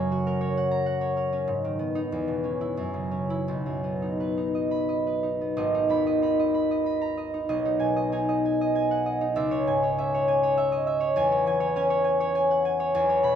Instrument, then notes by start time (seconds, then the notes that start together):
harp
Already playing: F#2 C#3 C#5
0.00 C#4
0.12 F#4
0.27 A#4
0.41 C#5
0.57 F#5
0.71 A#5
0.86 F#5
1.01 C#5
1.17 A#4
1.33 C#4
1.47 G#2
1.64 D#3
1.79 B3
1.95 D#4
2.12 E2
2.28 B2
2.44 C#4
2.61 E4
2.77 F#2
2.94 C#3
3.11 C#4
3.30 E4
3.48 B1
3.66 F#2
3.84 B3
4.02 D#4
4.20 B4
4.37 D#4
4.55 D#5
4.71 B5
4.89 D#5
5.07 B4
5.23 D#4
5.41 B3
5.57 G#1 D#5
5.75 D#4
5.89 D#2 B5
6.07 D#5
6.22 D#4 B5
6.39 D#5
6.54 B5
6.71 D#5
6.86 B5
7.01 A#5
7.17 D#5
7.34 D#4
7.49 B1 D#5
7.65 D#4
7.80 B2 G#5
7.96 D#5
8.12 D#4 G#5
8.29 D#5
8.45 G#5
8.61 D#5
8.75 G#5
8.91 F#5
9.06 D#5
9.21 D#4
9.36 C#2 E5
9.51 C#5
9.67 G#2 G#5
9.83 C#5
9.98 C#4 E5
10.14 C#5
10.28 G#5
10.43 C#5
10.57 E5
10.72 D#5
10.87 E5
11.00 C#5
11.16 E2 G#5
11.32 C#5
11.46 E3 G#5
11.60 C#5
11.76 C#4 G#5
11.90 C#5
12.04 G#5
12.20 C#5
12.35 G#5
12.51 F#5
12.65 G#5
12.80 C#5
12.95 E2 G#5
13.09 C#5
13.23 B2 B5